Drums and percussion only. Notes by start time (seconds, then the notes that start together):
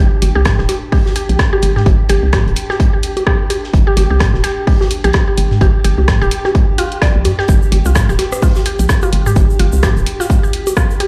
0.22 closed hi-hat, open hi-hat, low bongo
0.45 kick, cross-stick, snare, closed hi-hat, mid tom, open hi-hat
0.58 snare
0.69 snare, closed hi-hat, open hi-hat, low bongo
0.92 kick, open hi-hat
1.06 snare, low bongo
1.16 closed hi-hat, open hi-hat
1.29 open hi-hat
1.39 kick, cross-stick, snare, closed hi-hat
1.53 low bongo
1.62 closed hi-hat, open hi-hat
1.76 snare, mid tom
1.86 kick, closed hi-hat, low bongo
2.09 closed hi-hat, open hi-hat
2.33 kick, cross-stick, snare, closed hi-hat, mid tom, open hi-hat, low bongo
2.48 closed hi-hat
2.56 closed hi-hat, open hi-hat
2.70 snare, low bongo
2.80 kick, closed hi-hat
3.03 closed hi-hat, open hi-hat
3.17 open hi-hat, low bongo
3.27 kick, cross-stick
3.50 closed hi-hat, open hi-hat, low bongo
3.64 snare
3.74 kick, closed hi-hat
3.97 closed hi-hat, open hi-hat, low bongo
4.20 kick, cross-stick, snare, closed hi-hat, mid tom, open hi-hat
4.34 snare, low bongo
4.44 snare, closed hi-hat, open hi-hat
4.67 kick, open hi-hat
4.81 snare, low bongo
4.91 closed hi-hat, open hi-hat
5.04 open hi-hat
5.13 kick, cross-stick, snare, closed hi-hat, low bongo
5.37 closed hi-hat, open hi-hat
5.51 snare, mid tom
5.61 kick, closed hi-hat, low bongo
5.85 closed hi-hat, open hi-hat
5.98 low bongo
6.08 kick, cross-stick, snare, closed hi-hat, mid tom, open hi-hat
6.22 closed hi-hat
6.31 closed hi-hat, open hi-hat
6.45 snare, low bongo
6.55 kick, closed hi-hat
6.78 closed hi-hat, open hi-hat, low bongo
6.92 open hi-hat
7.02 kick, cross-stick, snare, closed hi-hat
7.25 closed hi-hat, open hi-hat, low bongo
7.39 snare
7.48 kick, closed hi-hat, shaker
7.62 shaker
7.72 closed hi-hat, open hi-hat, low bongo
7.85 shaker
7.95 kick, cross-stick, snare, closed hi-hat, mid tom, open hi-hat, shaker
8.08 snare, shaker
8.19 snare, closed hi-hat, open hi-hat, low bongo
8.32 cross-stick, shaker
8.42 kick, open hi-hat, shaker
8.55 snare, low bongo, shaker
8.66 closed hi-hat, open hi-hat
8.79 open hi-hat, shaker
8.89 kick, cross-stick, snare, closed hi-hat, shaker
9.02 low bongo, shaker
9.12 closed hi-hat, open hi-hat
9.26 mid tom, shaker
9.36 kick, closed hi-hat, low bongo, shaker
9.50 shaker
9.59 closed hi-hat, open hi-hat
9.72 shaker
9.83 kick, cross-stick, snare, closed hi-hat, mid tom, open hi-hat, low bongo, shaker
9.97 closed hi-hat, shaker
10.06 closed hi-hat, open hi-hat
10.20 snare, low bongo, shaker
10.30 kick, closed hi-hat, shaker
10.44 shaker
10.53 closed hi-hat, open hi-hat
10.67 open hi-hat, low bongo, shaker
10.76 kick, cross-stick, shaker
10.90 shaker
11.00 closed hi-hat, open hi-hat, low bongo